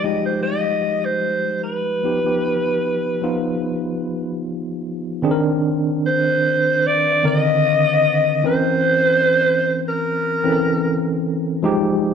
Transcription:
Already playing: F3 G3 G#3 D#4 G4
0.03 F3 G#3 D#4 G4 D#5
0.25 C5
0.43 D#5
1.05 C5
1.63 B4
2.04 F3 B3 D#4 G4
2.24 F3 B3 D#4 G4
3.22 F3 B3 D#4 F4
5.22 D#3 C4 D4 G#4
5.31 A#4
6.06 C5
6.87 D5
7.23 D3 D#3 C4 A#4 D#5
8.44 E3 C4 C#4 A#4 C5
9.88 A#4
10.44 E3 C4 C#4 A4
10.52 A#4
11.63 F3 G#3 D#4 G4

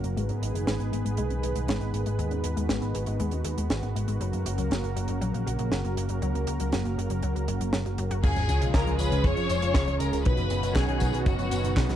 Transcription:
Already playing: C#3 F#3 A#3 C#4 F#4 A#4
0.04 F#1 F#3, closed hi-hat
0.17 G#1 G#2 D#3 G#3 B3 D#4 G#4 B4, closed hi-hat
0.29 G#2 C#4, closed hi-hat
0.42 G#1 G#4, closed hi-hat
0.55 F#1 G#3, closed hi-hat
0.67 G#1 G#3, snare, closed hi-hat
0.80 G#1 B3, closed hi-hat
0.92 G#1 G#3, closed hi-hat
1.05 G#1 G#3, closed hi-hat
1.17 B1 G#3, closed hi-hat
1.30 B1 C#4, closed hi-hat
1.43 B1 G#4, closed hi-hat
1.55 B1 G#3, closed hi-hat
1.68 G#1 G#3, snare, closed hi-hat
1.81 G#1 B3, closed hi-hat
1.94 G#1 G#3, closed hi-hat
2.06 G#1 G#3, closed hi-hat
2.19 D#2 G#3 F#4, closed hi-hat
2.31 D#2 C#4, closed hi-hat
2.44 D#2 G#4, closed hi-hat
2.57 D#2 G#3, closed hi-hat
2.69 G#1 G#3, snare, closed hi-hat
2.82 G#1 B3, closed hi-hat
2.95 G#1 G#3, closed hi-hat
3.06 G#1 G#3, closed hi-hat
3.20 D#2 G#3, closed hi-hat
3.31 D#2 C#4, closed hi-hat
3.44 D#2 G#4, closed hi-hat
3.57 D#2 G#3, closed hi-hat
3.70 G#1 G#3, snare, closed hi-hat
3.83 G#1 B3, closed hi-hat
3.95 G#1 G#3, closed hi-hat
4.08 G#1 G#3, closed hi-hat
4.20 F#1 C#3 F#3 A#3 C#4 F#4 A#4, closed hi-hat
4.33 F#2 A#3, closed hi-hat
4.46 F#1 F#4, closed hi-hat
4.58 C#2 F#3, closed hi-hat
4.71 F#1 F#3, snare, closed hi-hat
4.83 F#1 A#3, closed hi-hat
4.96 F#1 F#3, closed hi-hat
5.08 F#1 F#3, closed hi-hat
5.21 A#1 F#3, closed hi-hat
5.34 A#1 A#3, closed hi-hat
5.46 A#1 F#4, closed hi-hat
5.59 A#1 F#3, closed hi-hat
5.72 F#1 F#3, snare, closed hi-hat
5.84 F#1 A#3, closed hi-hat
5.97 F#1 F#3, closed hi-hat
6.09 F#1 F#3, closed hi-hat
6.22 C#2 F#3, closed hi-hat
6.35 C#2 A#3, closed hi-hat
6.47 C#2 F#4, closed hi-hat
6.60 C#2 F#3, closed hi-hat
6.72 F#1 F#3, snare, closed hi-hat
6.85 F#1 A#3, closed hi-hat
6.98 F#1 F#3, closed hi-hat
7.10 F#1 F#3, closed hi-hat
7.23 C#2 F#3, closed hi-hat
7.36 C#2 A#3, closed hi-hat
7.48 F#1 F#3, closed hi-hat
7.61 F#1 F#3, closed hi-hat
7.73 F#1 F#3, snare, closed hi-hat
7.86 F#1 F#3, closed hi-hat
7.98 F#1 F#3, closed hi-hat
8.11 F#1 F#4, closed hi-hat
8.23 C#2 C#3 F3 G#3 C#4 F4 G#4 C#5 G#5, kick, closed hi-hat, crash, tambourine, sub drop
8.36 G#1 F3, closed hi-hat, tambourine
8.49 C#2 C#4, closed hi-hat, tambourine
8.61 B1 C#3 C#4 F4 G#4 D#5, closed hi-hat, tambourine
8.74 C#2 C#3 A#4 A#5, kick, snare, clap, closed hi-hat, tambourine
8.87 C#2 F3, closed hi-hat
8.99 C#2 C#3 C#4 F4 G#4 B4 C#5 B5, closed hi-hat, tambourine
9.12 C#2 C#3, closed hi-hat, tambourine
9.24 F2 C#3 C#5 C#6, kick, closed hi-hat, tambourine
9.37 F2 F3, closed hi-hat, tambourine
9.49 F2 C#3 C#4 F4 G#4 C#5, closed hi-hat, tambourine
9.62 F2 C#3 C#4 F4 G#4 C#5, closed hi-hat, tambourine
9.74 C#2 C#3, kick, snare, clap, closed hi-hat, tambourine
9.87 C#2 F3, closed hi-hat
10.00 C#2 C#3 A#4 A#5, closed hi-hat, tambourine
10.13 C#2 C#3, closed hi-hat, tambourine
10.25 B1 B2 D#3 F#3 B3 C#4 D#4 F#4 B4 B5, kick, closed hi-hat, tambourine
10.37 F#1 F3, closed hi-hat, tambourine
10.50 F#1 B3, closed hi-hat, tambourine
10.63 F#1 B2 C#4 D#4 F#4 C#5, closed hi-hat, tambourine
10.75 B1 B2 G#4 G#5, kick, snare, clap, closed hi-hat, tambourine
10.88 B1 D#3, closed hi-hat
11.00 B1 B2 C#4 D#4 F#4 B4, kick, closed hi-hat, tambourine
11.13 B1 B2, closed hi-hat, tambourine
11.26 F#1 B2 F#4 F#5, kick, closed hi-hat, tambourine
11.38 F#1 F3, closed hi-hat, tambourine
11.51 F#1 B2 B3 C#4 D#4 F#4 B4, closed hi-hat, tambourine
11.64 F#1 B2 C#4 D#4 F#4 B4, closed hi-hat, tambourine
11.76 B1 B2, kick, snare, clap, closed hi-hat, tambourine
11.89 B1 D#3, snare, closed hi-hat, tambourine

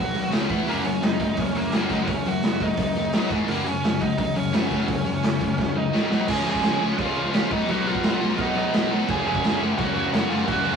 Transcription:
Already playing: B1 B2 F#3 F#4 F#5
0.14 D#2 B2 F#3, open hi-hat
0.31 C#2 C#3 G#3 C#4, snare, open hi-hat
0.49 E1 E3 B3 E4, kick, open hi-hat
0.67 F#1 F#3 A#3 C#4 A#4, open hi-hat
0.84 F#1 F#3 A#3 C#4 C#5, open hi-hat
1.01 F#1 F#3 A#3 D#4 D#5, snare, open hi-hat
1.20 F#3 A#3 D#4 D#5, kick, open hi-hat
1.37 F#1 F#3 A#3 C#4 C#5, kick, open hi-hat
1.55 F#1 F#3 A#3 A#4, open hi-hat
1.72 F#1 F#3 A#3 C#4, snare, open hi-hat
1.89 F#1 F#3 A#3 C#4 D#4 D#5, kick, open hi-hat
2.07 F#1 F#3 A#3 C#4 C#5, kick, open hi-hat
2.25 F#1 F#3 A#3 F#4 F#5, open hi-hat
2.43 F#1 F#3 A#3, snare, open hi-hat
2.60 F#1 F#3 A#3 D#4 D#5, kick, open hi-hat
2.77 F#1 F#3 A#3, kick, open hi-hat
2.95 F#1 F#3 A#3, open hi-hat
3.13 B1 B2 F#3 B3, snare, open hi-hat
3.30 G#1 G#2 D#3 G#3, kick, open hi-hat
3.48 F#1 F#2 C#3 F#3 A#3 A#4, open hi-hat
3.66 F#1 F#2 C#3 C#4 C#5, open hi-hat
3.83 F#1 F#2 C#3, snare, open hi-hat
4.01 F#2 C#3 D#4 D#5, kick, open hi-hat
4.18 F#1 F#2 C#3 D#4 D#5, kick, open hi-hat
4.35 F#1 F#2 C#3 C#4 C#5, open hi-hat
4.52 F#1 F#2 C#3 F#3, snare, open hi-hat
4.69 F#1 F#2 C#3 F#3, kick, open hi-hat
4.87 F#1 F#2 C#3, kick, open hi-hat
5.04 F#1 F#2 C#3, open hi-hat
5.23 F#1 F#2 C#3, snare, open hi-hat
5.40 F#1 F#2 C#3, kick, open hi-hat
5.57 F#1 F#2 C#3, kick, snare
5.75 F#1 F#2 C#3 D#4 D#5
5.92 G#1 G#2 D#3 G#3, snare
6.10 B1 B2 F#3 B3, snare
6.27 C#2 C#3 F3 G#3 C#4 G#4 G#5, kick, crash
6.45 C#2 C#3 F3 G#3 C#4
6.49 G#4 G#5
6.55 kick
6.62 C#2 C#3 F3 G#3 C#4, snare, crash
6.80 C#2 C#3 F3 G#3 C#4
6.98 C#2 C#3 F3 G#3 C#4 F4 F5, kick, crash
7.16 C#3 F3 G#3 C#4
7.33 C#2 C#3 F3 G#3 C#4 F4 F5, snare, crash
7.50 B1 B2 F#3 B3 D#4 D#5, kick
7.68 B1 B2 F#3 B3 D#4 F#4 F#5, crash
7.85 B2 F#3 B3 D#4 F4 F5
7.95 kick
8.03 B1 B2 F#3 B3 D#4, snare, crash
8.20 B1 B2 F#3 B3 D#4
8.38 B1 B2 F#3 B3 D#4 D#5, kick, crash
8.55 B2 F#3 B3 D#4 D#5
8.73 B1 B2 F#3 B3 D#4, snare, crash
8.91 B2 F#3 B3 D#4
9.08 F#1 F#2 C#3 F#3 A#3 C#4 G#4 G#5, kick, crash
9.26 F#1 F#2 C#3 F#3 A#3 C#4 G#4 G#5
9.35 kick
9.43 F#1 F#2 C#3 F#3 A#3 C#4, snare, crash
9.60 F#1 F#2 C#3 F#3 A#3 C#4
9.78 F#1 F#2 C#3 F#3 A#3 C#4 F#4 F#5, kick, crash
9.95 F#2 C#3 F#3 A#3 C#4
10.12 F#1 F#2 C#3 F#3 A#3 C#4 F#4 F#5, snare, crash
10.30 F#1 F#2 C#3 F#3 A#3 C#4 F4 F5
10.47 F#1 F#2 C#3 F#3 A#3 C#4 F#4 F#5, kick, crash
10.65 F#2 C#3 F#3 A#3 C#4
10.73 F4

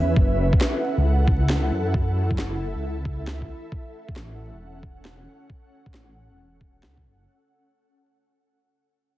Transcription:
Already playing: E2 C#4 B4 E5
0.16 F#1 E4 A4 F#5, kick
0.53 kick
0.61 snare
0.98 C#2
1.28 kick
1.50 snare
1.72 F#2
1.93 E5, kick
2.31 kick
2.38 F#1, snare
2.75 C#2
3.05 kick
3.27 snare
3.42 kick
3.71 C#4 F#5, kick
4.09 kick
4.16 A1, snare
4.53 E1
4.83 kick
5.05 snare
5.50 kick
5.86 kick
5.94 A1, snare
6.31 E1
6.61 kick
6.83 C#2, snare
6.97 kick
7.05 F#1

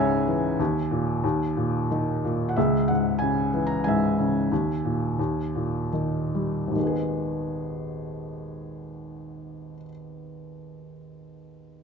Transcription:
Already playing: C#2 G#2 C#3 G#4 C#5 E5 F#5 G#5 A#5
0.28 E3
0.59 D#2
0.91 A#2
1.24 D#2
1.57 A#2
1.91 D#3
2.25 A#2
2.49 F#5
2.56 C#2 G#4 E5
2.88 G#2 F#5
3.19 C#3 G#5
3.54 E3
3.67 A#5
3.84 G#2 G#5
3.88 E5
4.19 C#3
4.52 D#2
4.85 A#2
5.19 D#2
5.55 A#2
5.93 D#3
6.35 G3
6.67 G#1 D#2
6.75 D#3 G#3
6.83 B3
6.87 G#4

